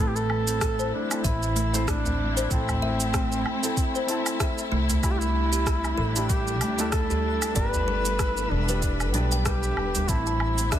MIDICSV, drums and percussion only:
0, 0, Header, 1, 3, 480
1, 0, Start_track
1, 0, Key_signature, 0, "minor"
1, 0, Tempo, 631579
1, 1907, Time_signature, 4, 2, 24, 8
1, 8202, End_track
2, 0, Start_track
2, 0, Title_t, "Udu"
2, 1561, Note_on_c, 9, 64, 101
2, 1637, Note_off_c, 9, 64, 0
2, 2042, Note_on_c, 9, 64, 72
2, 2118, Note_off_c, 9, 64, 0
2, 3719, Note_on_c, 9, 64, 87
2, 3795, Note_off_c, 9, 64, 0
2, 5401, Note_on_c, 9, 64, 91
2, 5477, Note_off_c, 9, 64, 0
2, 5879, Note_on_c, 9, 64, 78
2, 5955, Note_off_c, 9, 64, 0
2, 7568, Note_on_c, 9, 64, 80
2, 7644, Note_off_c, 9, 64, 0
2, 8202, End_track
3, 0, Start_track
3, 0, Title_t, "Drums"
3, 123, Note_on_c, 9, 82, 34
3, 199, Note_off_c, 9, 82, 0
3, 226, Note_on_c, 9, 77, 79
3, 302, Note_off_c, 9, 77, 0
3, 361, Note_on_c, 9, 46, 48
3, 362, Note_on_c, 9, 82, 67
3, 437, Note_off_c, 9, 46, 0
3, 438, Note_off_c, 9, 82, 0
3, 466, Note_on_c, 9, 37, 111
3, 466, Note_on_c, 9, 46, 58
3, 467, Note_on_c, 9, 36, 101
3, 467, Note_on_c, 9, 82, 54
3, 542, Note_off_c, 9, 37, 0
3, 542, Note_off_c, 9, 46, 0
3, 543, Note_off_c, 9, 36, 0
3, 543, Note_off_c, 9, 82, 0
3, 604, Note_on_c, 9, 82, 32
3, 680, Note_off_c, 9, 82, 0
3, 844, Note_on_c, 9, 46, 48
3, 844, Note_on_c, 9, 77, 83
3, 845, Note_on_c, 9, 82, 64
3, 920, Note_off_c, 9, 46, 0
3, 920, Note_off_c, 9, 77, 0
3, 921, Note_off_c, 9, 82, 0
3, 947, Note_on_c, 9, 36, 106
3, 947, Note_on_c, 9, 46, 60
3, 947, Note_on_c, 9, 82, 59
3, 1023, Note_off_c, 9, 36, 0
3, 1023, Note_off_c, 9, 46, 0
3, 1023, Note_off_c, 9, 82, 0
3, 1084, Note_on_c, 9, 82, 32
3, 1160, Note_off_c, 9, 82, 0
3, 1188, Note_on_c, 9, 46, 55
3, 1264, Note_off_c, 9, 46, 0
3, 1325, Note_on_c, 9, 46, 48
3, 1326, Note_on_c, 9, 82, 65
3, 1401, Note_off_c, 9, 46, 0
3, 1402, Note_off_c, 9, 82, 0
3, 1427, Note_on_c, 9, 36, 111
3, 1428, Note_on_c, 9, 37, 107
3, 1428, Note_on_c, 9, 46, 59
3, 1428, Note_on_c, 9, 77, 80
3, 1429, Note_on_c, 9, 82, 55
3, 1503, Note_off_c, 9, 36, 0
3, 1504, Note_off_c, 9, 37, 0
3, 1504, Note_off_c, 9, 46, 0
3, 1504, Note_off_c, 9, 77, 0
3, 1505, Note_off_c, 9, 82, 0
3, 1564, Note_on_c, 9, 82, 33
3, 1640, Note_off_c, 9, 82, 0
3, 1804, Note_on_c, 9, 46, 48
3, 1804, Note_on_c, 9, 82, 71
3, 1880, Note_off_c, 9, 46, 0
3, 1880, Note_off_c, 9, 82, 0
3, 1907, Note_on_c, 9, 36, 108
3, 1907, Note_on_c, 9, 46, 53
3, 1908, Note_on_c, 9, 82, 56
3, 1983, Note_off_c, 9, 36, 0
3, 1983, Note_off_c, 9, 46, 0
3, 1984, Note_off_c, 9, 82, 0
3, 2042, Note_on_c, 9, 77, 75
3, 2043, Note_on_c, 9, 82, 35
3, 2118, Note_off_c, 9, 77, 0
3, 2119, Note_off_c, 9, 82, 0
3, 2281, Note_on_c, 9, 46, 47
3, 2282, Note_on_c, 9, 82, 71
3, 2357, Note_off_c, 9, 46, 0
3, 2358, Note_off_c, 9, 82, 0
3, 2386, Note_on_c, 9, 36, 110
3, 2386, Note_on_c, 9, 37, 108
3, 2386, Note_on_c, 9, 46, 61
3, 2386, Note_on_c, 9, 82, 58
3, 2462, Note_off_c, 9, 36, 0
3, 2462, Note_off_c, 9, 37, 0
3, 2462, Note_off_c, 9, 46, 0
3, 2462, Note_off_c, 9, 82, 0
3, 2524, Note_on_c, 9, 82, 33
3, 2600, Note_off_c, 9, 82, 0
3, 2627, Note_on_c, 9, 77, 78
3, 2703, Note_off_c, 9, 77, 0
3, 2763, Note_on_c, 9, 46, 45
3, 2763, Note_on_c, 9, 82, 73
3, 2839, Note_off_c, 9, 46, 0
3, 2839, Note_off_c, 9, 82, 0
3, 2866, Note_on_c, 9, 36, 106
3, 2866, Note_on_c, 9, 46, 57
3, 2867, Note_on_c, 9, 82, 60
3, 2942, Note_off_c, 9, 36, 0
3, 2942, Note_off_c, 9, 46, 0
3, 2943, Note_off_c, 9, 82, 0
3, 3004, Note_on_c, 9, 82, 36
3, 3080, Note_off_c, 9, 82, 0
3, 3104, Note_on_c, 9, 46, 55
3, 3180, Note_off_c, 9, 46, 0
3, 3239, Note_on_c, 9, 46, 47
3, 3239, Note_on_c, 9, 77, 79
3, 3239, Note_on_c, 9, 82, 70
3, 3315, Note_off_c, 9, 46, 0
3, 3315, Note_off_c, 9, 77, 0
3, 3315, Note_off_c, 9, 82, 0
3, 3345, Note_on_c, 9, 36, 113
3, 3346, Note_on_c, 9, 37, 110
3, 3346, Note_on_c, 9, 46, 60
3, 3346, Note_on_c, 9, 82, 60
3, 3421, Note_off_c, 9, 36, 0
3, 3422, Note_off_c, 9, 37, 0
3, 3422, Note_off_c, 9, 46, 0
3, 3422, Note_off_c, 9, 82, 0
3, 3482, Note_on_c, 9, 82, 34
3, 3558, Note_off_c, 9, 82, 0
3, 3721, Note_on_c, 9, 46, 47
3, 3722, Note_on_c, 9, 82, 70
3, 3797, Note_off_c, 9, 46, 0
3, 3798, Note_off_c, 9, 82, 0
3, 3825, Note_on_c, 9, 36, 109
3, 3826, Note_on_c, 9, 46, 52
3, 3826, Note_on_c, 9, 77, 74
3, 3826, Note_on_c, 9, 82, 58
3, 3901, Note_off_c, 9, 36, 0
3, 3902, Note_off_c, 9, 46, 0
3, 3902, Note_off_c, 9, 77, 0
3, 3902, Note_off_c, 9, 82, 0
3, 3962, Note_on_c, 9, 82, 35
3, 4038, Note_off_c, 9, 82, 0
3, 4200, Note_on_c, 9, 46, 46
3, 4201, Note_on_c, 9, 82, 71
3, 4276, Note_off_c, 9, 46, 0
3, 4277, Note_off_c, 9, 82, 0
3, 4305, Note_on_c, 9, 36, 116
3, 4307, Note_on_c, 9, 37, 106
3, 4307, Note_on_c, 9, 46, 59
3, 4307, Note_on_c, 9, 82, 61
3, 4381, Note_off_c, 9, 36, 0
3, 4383, Note_off_c, 9, 37, 0
3, 4383, Note_off_c, 9, 46, 0
3, 4383, Note_off_c, 9, 82, 0
3, 4441, Note_on_c, 9, 77, 78
3, 4442, Note_on_c, 9, 82, 35
3, 4517, Note_off_c, 9, 77, 0
3, 4518, Note_off_c, 9, 82, 0
3, 4682, Note_on_c, 9, 46, 47
3, 4682, Note_on_c, 9, 82, 74
3, 4758, Note_off_c, 9, 46, 0
3, 4758, Note_off_c, 9, 82, 0
3, 4785, Note_on_c, 9, 36, 111
3, 4786, Note_on_c, 9, 46, 52
3, 4786, Note_on_c, 9, 82, 62
3, 4861, Note_off_c, 9, 36, 0
3, 4862, Note_off_c, 9, 46, 0
3, 4862, Note_off_c, 9, 82, 0
3, 4921, Note_on_c, 9, 82, 34
3, 4997, Note_off_c, 9, 82, 0
3, 5023, Note_on_c, 9, 46, 49
3, 5023, Note_on_c, 9, 77, 72
3, 5099, Note_off_c, 9, 46, 0
3, 5099, Note_off_c, 9, 77, 0
3, 5158, Note_on_c, 9, 46, 44
3, 5158, Note_on_c, 9, 82, 73
3, 5234, Note_off_c, 9, 46, 0
3, 5234, Note_off_c, 9, 82, 0
3, 5261, Note_on_c, 9, 37, 108
3, 5261, Note_on_c, 9, 46, 52
3, 5262, Note_on_c, 9, 82, 57
3, 5265, Note_on_c, 9, 36, 110
3, 5337, Note_off_c, 9, 37, 0
3, 5337, Note_off_c, 9, 46, 0
3, 5338, Note_off_c, 9, 82, 0
3, 5341, Note_off_c, 9, 36, 0
3, 5398, Note_on_c, 9, 82, 35
3, 5474, Note_off_c, 9, 82, 0
3, 5639, Note_on_c, 9, 46, 47
3, 5639, Note_on_c, 9, 77, 80
3, 5640, Note_on_c, 9, 82, 74
3, 5715, Note_off_c, 9, 46, 0
3, 5715, Note_off_c, 9, 77, 0
3, 5716, Note_off_c, 9, 82, 0
3, 5743, Note_on_c, 9, 46, 53
3, 5744, Note_on_c, 9, 82, 58
3, 5746, Note_on_c, 9, 36, 105
3, 5819, Note_off_c, 9, 46, 0
3, 5820, Note_off_c, 9, 82, 0
3, 5822, Note_off_c, 9, 36, 0
3, 5881, Note_on_c, 9, 82, 34
3, 5957, Note_off_c, 9, 82, 0
3, 6121, Note_on_c, 9, 46, 42
3, 6121, Note_on_c, 9, 82, 74
3, 6197, Note_off_c, 9, 46, 0
3, 6197, Note_off_c, 9, 82, 0
3, 6226, Note_on_c, 9, 37, 100
3, 6226, Note_on_c, 9, 46, 57
3, 6226, Note_on_c, 9, 77, 81
3, 6226, Note_on_c, 9, 82, 60
3, 6227, Note_on_c, 9, 36, 110
3, 6302, Note_off_c, 9, 37, 0
3, 6302, Note_off_c, 9, 46, 0
3, 6302, Note_off_c, 9, 77, 0
3, 6302, Note_off_c, 9, 82, 0
3, 6303, Note_off_c, 9, 36, 0
3, 6362, Note_on_c, 9, 82, 34
3, 6438, Note_off_c, 9, 82, 0
3, 6602, Note_on_c, 9, 46, 45
3, 6602, Note_on_c, 9, 82, 71
3, 6678, Note_off_c, 9, 46, 0
3, 6678, Note_off_c, 9, 82, 0
3, 6706, Note_on_c, 9, 46, 52
3, 6707, Note_on_c, 9, 82, 54
3, 6708, Note_on_c, 9, 36, 106
3, 6782, Note_off_c, 9, 46, 0
3, 6783, Note_off_c, 9, 82, 0
3, 6784, Note_off_c, 9, 36, 0
3, 6842, Note_on_c, 9, 77, 76
3, 6843, Note_on_c, 9, 82, 34
3, 6918, Note_off_c, 9, 77, 0
3, 6919, Note_off_c, 9, 82, 0
3, 6945, Note_on_c, 9, 46, 51
3, 7021, Note_off_c, 9, 46, 0
3, 7080, Note_on_c, 9, 46, 43
3, 7081, Note_on_c, 9, 82, 69
3, 7156, Note_off_c, 9, 46, 0
3, 7157, Note_off_c, 9, 82, 0
3, 7186, Note_on_c, 9, 37, 100
3, 7186, Note_on_c, 9, 46, 56
3, 7187, Note_on_c, 9, 82, 58
3, 7188, Note_on_c, 9, 36, 107
3, 7262, Note_off_c, 9, 37, 0
3, 7262, Note_off_c, 9, 46, 0
3, 7263, Note_off_c, 9, 82, 0
3, 7264, Note_off_c, 9, 36, 0
3, 7321, Note_on_c, 9, 82, 31
3, 7397, Note_off_c, 9, 82, 0
3, 7426, Note_on_c, 9, 77, 74
3, 7502, Note_off_c, 9, 77, 0
3, 7561, Note_on_c, 9, 46, 44
3, 7562, Note_on_c, 9, 82, 73
3, 7637, Note_off_c, 9, 46, 0
3, 7638, Note_off_c, 9, 82, 0
3, 7666, Note_on_c, 9, 46, 49
3, 7667, Note_on_c, 9, 82, 56
3, 7668, Note_on_c, 9, 36, 100
3, 7742, Note_off_c, 9, 46, 0
3, 7743, Note_off_c, 9, 82, 0
3, 7744, Note_off_c, 9, 36, 0
3, 7802, Note_on_c, 9, 82, 32
3, 7878, Note_off_c, 9, 82, 0
3, 7905, Note_on_c, 9, 77, 85
3, 7981, Note_off_c, 9, 77, 0
3, 8042, Note_on_c, 9, 46, 42
3, 8042, Note_on_c, 9, 82, 68
3, 8118, Note_off_c, 9, 46, 0
3, 8118, Note_off_c, 9, 82, 0
3, 8147, Note_on_c, 9, 36, 107
3, 8147, Note_on_c, 9, 37, 100
3, 8147, Note_on_c, 9, 46, 54
3, 8148, Note_on_c, 9, 82, 59
3, 8202, Note_off_c, 9, 36, 0
3, 8202, Note_off_c, 9, 37, 0
3, 8202, Note_off_c, 9, 46, 0
3, 8202, Note_off_c, 9, 82, 0
3, 8202, End_track
0, 0, End_of_file